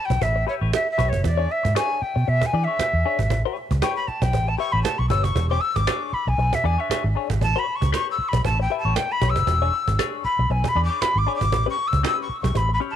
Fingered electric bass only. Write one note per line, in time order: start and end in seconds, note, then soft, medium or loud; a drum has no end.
0.10 0.20 B1 medium
0.22 0.43 A1 medium
0.61 0.71 A1 medium
0.99 1.11 B1 medium
1.13 1.22 F#1 medium
1.24 1.46 E2 loud
1.65 1.74 G#2 loud
2.02 muted fingered electric bass stroke medium
2.16 2.25 B2 medium
2.28 2.40 B2 medium
2.53 2.65 E3 loud
2.79 muted fingered electric bass stroke medium
2.93 3.03 E2 medium
3.19 3.30 G#1 medium
3.30 3.42 A1 loud
3.71 3.80 C#2 medium
4.08 muted fingered electric bass stroke soft
4.22 4.34 B1 loud
4.34 4.55 A1 loud
4.73 4.83 A1 medium
4.99 5.08 B1 medium
5.10 5.24 G1 loud
5.24 5.34 F#1 medium
5.36 5.57 E1 loud
5.76 5.86 G#1 medium
6.13 muted fingered electric bass stroke medium
6.27 6.37 B1 medium
6.38 6.50 B1 loud
6.64 6.76 E2 medium
6.89 muted fingered electric bass stroke soft
7.04 7.14 G#1 medium
7.30 7.39 G#1 medium
7.41 7.53 A1 loud
7.82 7.91 C#2 medium
8.18 muted fingered electric bass stroke soft
8.33 8.42 B1 loud
8.45 8.66 A1 medium
8.85 8.94 A1 medium
9.22 9.34 B1 medium
9.36 9.45 F#1 medium
9.47 9.69 E1 loud
9.88 9.97 G#1 medium
10.24 muted fingered electric bass stroke soft
10.39 10.48 B1 loud
10.50 10.62 B1 medium
10.75 10.87 E2 loud
11.02 muted fingered electric bass stroke soft
11.15 11.25 G#1 medium
11.41 11.53 G#1 medium
11.53 11.65 A1 loud
11.93 12.02 C#2 loud
12.29 muted fingered electric bass stroke soft
12.44 12.53 B1 loud
12.55 12.77 A1 medium